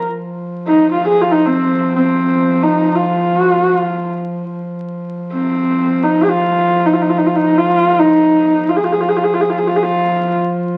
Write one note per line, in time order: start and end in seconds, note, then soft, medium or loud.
0.00 0.13 F3 soft
0.13 4.51 F3 medium
0.67 0.90 D#4 medium
0.92 1.07 F4 medium
1.08 1.23 G#4 medium
1.21 1.33 F4 medium
1.32 1.48 D#4 medium
1.46 1.95 C4 medium
1.96 2.64 C4 medium
2.63 2.97 D#4 medium
2.96 3.39 F4 medium
3.39 3.51 F#4 medium
3.51 3.63 F4 medium
3.63 3.75 F#4 medium
3.75 4.17 F4 medium
4.51 8.83 F3 medium
5.34 6.05 C4 medium
6.04 6.25 D#4 medium
6.24 6.31 G#4 medium
6.30 6.87 F4 medium
6.86 6.95 D#4 medium
6.93 7.03 F4 medium
7.02 7.11 D#4 medium
7.09 7.19 F4 medium
7.18 7.28 D#4 medium
7.26 7.37 F4 medium
7.36 7.59 D#4 medium
7.58 8.01 F4 medium
8.00 8.71 D#4 medium
8.69 8.78 F4 medium
8.77 8.86 G#4 medium
8.84 10.77 F3 medium
8.84 8.94 F4 medium
8.92 9.02 G#4 medium
9.01 9.10 F4 medium
9.09 9.18 G#4 medium
9.17 9.25 F4 medium
9.24 9.35 G#4 medium
9.34 9.42 F4 medium
9.41 9.51 G#4 medium
9.49 9.60 F4 medium
9.58 9.69 G#4 medium
9.67 9.77 F4 medium
9.76 9.85 G#4 medium
9.83 10.36 F4 medium